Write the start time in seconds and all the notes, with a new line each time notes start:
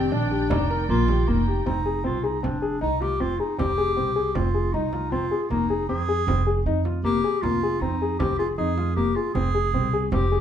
Already playing: D#3 C4 D5 G5
0.12 A#1 D4
0.31 G4
0.50 F1 D4 D#4, frame drum
0.70 A#4
0.89 A#1 A#3 F4
1.08 G4, frame drum
1.28 F1 A#3 D#4
1.47 G4, frame drum
1.66 F1 C4 D#4, frame drum
1.86 G#4
2.04 C2 C4 F4, frame drum
2.23 D#4 G#4
2.43 F1 C4 D4, frame drum
2.62 G#4
2.81 C2 D#4
3.01 F4 G4, frame drum
3.20 F1 C4 F4
3.39 D#4 G#4
3.58 F1 C4 G4, frame drum
3.78 G#4
3.97 C2 C4, frame drum
4.16 G#4
4.35 F1 C4 F4, frame drum
4.54 G#4
4.73 C2 D#4
4.93 F4, frame drum
5.12 F1 C4 F4
5.31 G#4
5.43 F4
5.50 F1 A#3 D#4, frame drum
5.70 G#4
5.89 F2 C4 G#4, frame drum
6.09 G#4
6.27 F1 C4, frame drum
6.47 G#4
6.66 F2 D#4
6.85 F4, frame drum
7.04 F1 A#3 G4
7.24 G#4
7.42 F1 A#3 F4, frame drum
7.62 G#4, frame drum
7.81 F2 C4 D#4
8.02 G#4
8.19 F1 C4 G4, frame drum
8.38 F4 G#4
8.58 F2 D#4 G#4
8.78 F4, frame drum
8.96 F1 A#3 G4, frame drum
9.16 F4 G#4
9.34 F1 C4 G#4, frame drum
9.54 G#4
9.73 C2 C4, frame drum
9.93 G#4
10.12 F1 C4 G4, frame drum
10.32 G#4